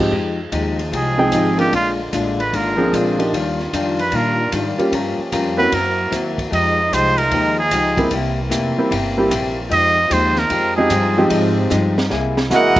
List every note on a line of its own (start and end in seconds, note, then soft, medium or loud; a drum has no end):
0.00 0.11 G#2 medium
0.00 0.10 F3 medium
0.00 0.11 G#3 medium
0.00 0.11 C4 medium
0.00 0.11 D#4 medium
0.00 0.11 G4 medium
0.11 0.51 F2 medium
0.11 0.39 F3 medium
0.11 1.71 F3 medium
0.11 0.39 G#3 soft
0.11 3.29 G#3 medium
0.11 1.70 D#4 medium
0.11 0.40 D#4 medium
0.11 0.40 G4 medium
0.11 1.71 G#4 medium
0.11 kick soft
0.52 0.91 D#2 medium
0.52 0.79 F3 medium
0.52 0.80 G#3 medium
0.52 0.80 D#4 medium
0.52 0.80 G4 medium
0.52 kick soft
0.52 hi-hat pedal soft
0.52 ride medium
0.79 ride soft
0.92 1.31 C2 medium
0.92 1.19 F3 soft
0.92 1.20 G#3 soft
0.92 1.20 D#4 soft
0.92 1.20 G4 soft
0.92 kick soft
0.92 ride medium
0.96 1.56 G#4 medium
1.18 1.55 F3 medium
1.18 1.55 G#3 medium
1.18 1.55 C4 medium
1.18 1.56 D#4 medium
1.18 1.56 G5 medium
1.32 1.71 G#1 medium
1.32 1.60 F3 soft
1.32 1.60 G#3 soft
1.32 1.60 D#4 medium
1.32 1.60 G4 medium
1.32 kick soft
1.32 hi-hat pedal medium
1.32 ride medium
1.58 1.70 F3 medium
1.58 1.71 A#3 medium
1.58 1.71 C4 medium
1.58 1.71 D4 medium
1.58 1.71 F4 medium
1.58 1.72 G4 medium
1.58 ride soft
1.72 2.11 A#1 medium
1.72 1.99 A#2 soft
1.72 3.31 D3 medium
1.72 2.00 G#3 medium
1.72 3.32 A#3 medium
1.72 2.00 D4 soft
1.72 2.00 F4 soft
1.72 4.90 F4 medium
1.72 1.90 F4 medium
1.72 kick soft
1.72 ride medium
2.13 2.51 A1 medium
2.13 2.40 A#2 medium
2.13 2.40 G#3 medium
2.13 2.41 D4 medium
2.13 2.40 F4 medium
2.13 kick soft
2.13 hi-hat pedal medium
2.13 ride medium
2.40 2.57 B4 medium
2.40 ride soft
2.53 2.91 G#1 medium
2.53 2.80 A#2 soft
2.53 2.81 G#3 soft
2.53 2.81 D4 soft
2.53 2.81 F4 medium
2.53 2.94 A#4 medium
2.53 kick soft
2.53 ride medium
2.77 3.15 F3 medium
2.77 3.15 A#3 medium
2.77 3.15 C4 medium
2.77 3.16 D4 medium
2.77 3.15 G#4 medium
2.93 3.31 A#1 medium
2.93 3.20 A#2 medium
2.93 3.20 G#3 medium
2.93 3.21 D4 medium
2.93 3.21 F4 medium
2.93 kick soft
2.93 hi-hat pedal medium
2.93 ride medium
3.18 3.31 F3 medium
3.18 3.31 A#3 medium
3.18 3.31 D4 medium
3.18 3.31 D#4 medium
3.18 3.31 G4 medium
3.18 ride medium
3.32 3.72 D#2 medium
3.32 4.91 D#3 medium
3.32 3.60 D#3 medium
3.32 4.91 G3 medium
3.32 3.60 G3 medium
3.32 4.91 D4 medium
3.32 3.61 D4 medium
3.32 3.61 F4 medium
3.32 kick soft
3.32 ride medium
3.60 snare soft
3.73 4.12 F2 medium
3.73 4.00 D#3 medium
3.73 4.01 G3 medium
3.73 4.01 D4 medium
3.73 4.01 F4 medium
3.73 kick soft
3.73 hi-hat pedal medium
3.73 ride medium
3.99 4.17 B4 medium
3.99 ride soft
4.12 4.51 A#2 medium
4.12 4.40 D#3 soft
4.12 4.41 G3 medium
4.12 4.41 D4 soft
4.12 4.41 F4 medium
4.12 kick soft
4.12 ride medium
4.16 4.54 A#4 medium
4.52 4.77 G#2 medium
4.52 4.80 D#3 soft
4.52 4.80 G3 medium
4.52 4.81 D4 medium
4.52 4.81 F4 medium
4.52 kick soft
4.52 hi-hat pedal medium
4.52 ride medium
4.78 4.91 G3 medium
4.78 4.91 A#3 medium
4.78 4.91 C#4 medium
4.78 4.91 F4 medium
4.78 4.92 G4 medium
4.78 muted upright bass stroke soft
4.78 ride soft
4.91 5.16 G2 medium
4.91 5.71 F3 medium
4.91 5.20 G3 soft
4.91 5.68 A#3 medium
4.91 5.71 C#4 medium
4.91 5.20 C#4 medium
4.91 5.20 F4 medium
4.91 5.71 G4 medium
4.91 5.21 A#4 medium
4.91 kick soft
4.91 ride medium
5.18 muted upright bass stroke soft
5.32 5.71 F2 medium
5.32 5.60 G3 medium
5.32 5.60 C#4 medium
5.32 5.60 F4 medium
5.32 5.60 A#4 medium
5.32 kick soft
5.32 hi-hat pedal medium
5.32 ride medium
5.57 5.70 A#3 medium
5.57 5.70 C4 medium
5.57 5.70 C#4 medium
5.57 5.71 E4 medium
5.57 5.71 F#4 medium
5.57 5.76 B4 medium
5.69 6.11 F#2 medium
5.69 6.00 F#3 soft
5.69 6.50 A#3 medium
5.69 6.50 C4 medium
5.69 6.50 E4 medium
5.69 6.50 F#4 medium
5.69 kick soft
5.69 ride medium
5.74 6.00 C4 soft
5.74 6.00 E4 soft
5.74 6.13 A#4 medium
5.74 6.01 A#4 medium
6.11 6.51 D#2 medium
6.11 6.39 F#3 medium
6.11 6.39 C4 medium
6.11 6.39 E4 medium
6.11 6.39 A#4 medium
6.11 kick soft
6.11 hi-hat pedal medium
6.11 ride medium
6.38 kick soft
6.38 ride medium
6.51 6.91 F2 medium
6.51 6.79 F3 soft
6.51 8.10 F3 medium
6.51 6.79 G#3 soft
6.51 8.10 G#3 medium
6.51 6.80 D#4 soft
6.51 8.11 D#4 medium
6.51 6.80 G4 medium
6.51 6.95 D#5 medium
6.51 kick soft
6.51 ride medium
6.92 7.31 C2 medium
6.92 7.19 F3 medium
6.92 7.20 G#3 medium
6.92 7.20 D#4 medium
6.92 7.20 G4 medium
6.92 7.19 C5 medium
6.92 kick soft
6.92 hi-hat pedal medium
6.92 ride medium
7.18 7.58 A#4 medium
7.18 ride soft
7.31 7.70 D#2 medium
7.31 7.59 F3 soft
7.31 7.60 G#3 medium
7.31 7.60 D#4 soft
7.31 7.60 G4 soft
7.31 kick soft
7.31 ride medium
7.59 8.09 G#4 medium
7.71 8.10 C#2 medium
7.71 7.99 F3 soft
7.71 8.00 G#3 medium
7.71 8.00 D#4 medium
7.71 8.00 G4 medium
7.71 kick soft
7.71 hi-hat pedal medium
7.71 ride medium
7.97 8.10 G3 medium
7.97 8.10 A#3 medium
7.97 8.11 C4 medium
7.97 8.11 E4 medium
7.97 8.11 G4 medium
7.97 kick medium
7.97 ride soft
8.10 8.50 C2 medium
8.10 8.39 C3 medium
8.10 9.69 E3 medium
8.10 9.69 A#3 medium
8.10 8.40 A#3 medium
8.10 9.69 C4 medium
8.10 8.40 E4 medium
8.10 8.40 G4 medium
8.10 kick soft
8.10 ride medium
8.50 8.76 F1 medium
8.50 8.78 C3 medium
8.50 8.78 A#3 medium
8.50 8.79 E4 medium
8.50 8.79 G4 medium
8.50 kick soft
8.50 hi-hat pedal medium
8.50 ride medium
8.77 8.90 G3 medium
8.77 8.91 A#3 medium
8.77 8.91 C4 medium
8.77 8.91 E4 medium
8.77 8.91 G4 medium
8.77 muted upright bass stroke soft
8.89 9.30 G1 loud
8.89 9.18 C3 medium
8.89 9.18 A#3 soft
8.89 9.19 E4 medium
8.89 9.19 G4 medium
8.89 kick soft
8.89 ride medium
9.17 9.30 G3 medium
9.17 9.30 A#3 medium
9.17 9.30 C4 medium
9.17 9.30 E4 medium
9.17 9.31 G4 medium
9.29 9.70 A#1 medium
9.29 9.57 C3 medium
9.29 9.58 A#3 medium
9.29 9.58 E4 medium
9.29 9.58 G4 medium
9.29 kick soft
9.29 hi-hat pedal medium
9.29 ride medium
9.69 10.10 F2 medium
9.69 9.98 F3 medium
9.69 12.08 F3 medium
9.69 9.98 G#3 medium
9.69 12.08 C4 medium
9.69 9.98 D#4 medium
9.69 12.09 D#4 medium
9.69 9.98 G4 medium
9.69 10.14 D#5 loud
9.69 kick soft
9.69 ride medium
10.09 10.50 D#2 loud
10.09 10.37 F3 medium
10.09 10.38 G#3 medium
10.09 10.38 D#4 medium
10.09 10.38 G4 medium
10.09 10.40 C5 medium
10.09 kick soft
10.09 hi-hat pedal soft
10.09 ride medium
10.36 10.76 A#4 medium
10.36 snare soft
10.50 10.89 F2 medium
10.50 10.78 F3 soft
10.50 10.78 G#3 soft
10.50 10.78 D#4 medium
10.50 10.79 G4 medium
10.50 kick soft
10.50 ride medium
10.76 10.90 F3 medium
10.76 10.90 G#3 medium
10.76 10.90 C4 medium
10.76 10.90 D#4 medium
10.76 10.91 G4 medium
10.76 11.27 G#4 medium
10.89 11.29 G2 medium
10.89 11.17 F3 medium
10.89 11.18 G#3 medium
10.89 11.18 D#4 medium
10.89 11.18 G4 medium
10.89 kick soft
10.89 hi-hat pedal medium
10.89 ride medium
11.18 11.68 F3 medium
11.18 11.68 G#3 medium
11.18 11.68 C4 medium
11.18 11.68 D#4 medium
11.18 11.69 G4 medium
11.29 11.69 G#2 medium
11.29 11.57 F3 medium
11.29 11.58 G#3 medium
11.29 11.58 D#4 medium
11.29 11.58 G4 medium
11.29 kick soft
11.29 ride medium
11.70 12.09 G2 medium
11.70 11.98 F3 medium
11.70 11.98 G#3 medium
11.70 11.98 D#4 medium
11.70 11.98 G4 medium
11.70 snare soft
11.70 hi-hat pedal medium
11.98 snare medium
12.10 12.49 C2 medium
12.10 12.72 C3 medium
12.10 12.38 C3 medium
12.10 12.72 G#3 medium
12.10 12.72 A#3 medium
12.10 12.38 A#3 medium
12.10 12.72 E4 medium
12.10 12.38 E4 medium
12.10 12.39 G#4 medium
12.10 snare medium
12.37 snare medium
12.50 12.80 E2 medium
12.50 12.77 C3 medium
12.50 12.80 G#3 medium
12.50 12.80 A#3 medium
12.50 12.78 A#3 medium
12.50 12.78 E4 medium
12.50 12.80 E4 medium
12.50 12.80 F#4 medium
12.50 12.78 G#4 medium
12.50 12.80 A#4 medium
12.50 12.80 D#5 medium
12.50 snare medium
12.50 hi-hat pedal medium
12.54 12.80 F#5 medium
12.76 kick medium
12.76 crash medium